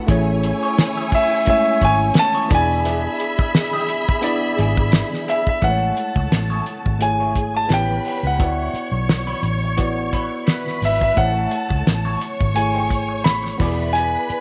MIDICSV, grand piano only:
0, 0, Header, 1, 2, 480
1, 0, Start_track
1, 0, Key_signature, 3, "major"
1, 0, Tempo, 693642
1, 60, Time_signature, 4, 2, 24, 8
1, 9968, End_track
2, 0, Start_track
2, 0, Title_t, "Grand piano"
2, 0, Program_c, 0, 0
2, 794, Note_on_c, 0, 76, 91
2, 1024, Note_off_c, 0, 76, 0
2, 1035, Note_on_c, 0, 76, 95
2, 1273, Note_off_c, 0, 76, 0
2, 1278, Note_on_c, 0, 80, 103
2, 1491, Note_off_c, 0, 80, 0
2, 1518, Note_on_c, 0, 81, 108
2, 1731, Note_off_c, 0, 81, 0
2, 1762, Note_on_c, 0, 80, 94
2, 3400, Note_off_c, 0, 80, 0
2, 3664, Note_on_c, 0, 76, 74
2, 3788, Note_off_c, 0, 76, 0
2, 3798, Note_on_c, 0, 76, 77
2, 3902, Note_on_c, 0, 78, 82
2, 3904, Note_off_c, 0, 76, 0
2, 4859, Note_on_c, 0, 80, 85
2, 4887, Note_off_c, 0, 78, 0
2, 5235, Note_on_c, 0, 81, 85
2, 5238, Note_off_c, 0, 80, 0
2, 5343, Note_off_c, 0, 81, 0
2, 5353, Note_on_c, 0, 79, 84
2, 5688, Note_off_c, 0, 79, 0
2, 5722, Note_on_c, 0, 78, 68
2, 6166, Note_off_c, 0, 78, 0
2, 7508, Note_on_c, 0, 76, 81
2, 7623, Note_off_c, 0, 76, 0
2, 7633, Note_on_c, 0, 76, 80
2, 7734, Note_on_c, 0, 78, 86
2, 7743, Note_off_c, 0, 76, 0
2, 8428, Note_off_c, 0, 78, 0
2, 8690, Note_on_c, 0, 80, 82
2, 9164, Note_on_c, 0, 83, 93
2, 9188, Note_off_c, 0, 80, 0
2, 9639, Note_on_c, 0, 80, 89
2, 9666, Note_off_c, 0, 83, 0
2, 9968, Note_off_c, 0, 80, 0
2, 9968, End_track
0, 0, End_of_file